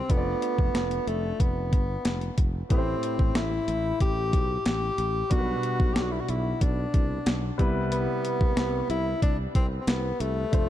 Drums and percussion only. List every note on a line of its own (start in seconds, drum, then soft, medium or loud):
0.10 kick medium
0.10 closed hi-hat medium
0.42 closed hi-hat medium
0.58 kick medium
0.75 snare medium
0.75 closed hi-hat medium
0.91 closed hi-hat soft
1.08 closed hi-hat medium
1.40 kick medium
1.40 closed hi-hat medium
1.73 kick medium
1.73 closed hi-hat medium
2.05 snare loud
2.05 closed hi-hat medium
2.21 closed hi-hat soft
2.38 kick medium
2.38 closed hi-hat medium
2.70 kick medium
2.70 closed hi-hat medium
3.03 closed hi-hat medium
3.19 kick medium
3.35 snare loud
3.35 closed hi-hat medium
3.68 closed hi-hat medium
4.00 kick medium
4.00 closed hi-hat medium
4.33 kick medium
4.33 closed hi-hat medium
4.66 snare loud
4.66 closed hi-hat medium
4.98 closed hi-hat medium
5.31 kick medium
5.31 closed hi-hat medium
5.63 closed hi-hat medium
5.80 kick medium
5.96 snare loud
5.96 closed hi-hat medium
6.29 closed hi-hat medium
6.61 kick medium
6.61 closed hi-hat medium
6.94 kick medium
6.94 closed hi-hat medium
7.26 snare loud
7.26 closed hi-hat medium
7.59 kick loud
7.59 closed hi-hat medium
7.92 closed hi-hat medium
8.25 closed hi-hat medium
8.41 kick medium
8.57 snare loud
8.57 closed hi-hat medium
8.90 closed hi-hat medium
9.22 kick medium
9.22 closed hi-hat medium
9.55 kick medium
9.55 closed hi-hat medium
9.87 snare loud
9.87 closed hi-hat medium
10.20 closed hi-hat medium
10.53 kick medium
10.53 closed hi-hat medium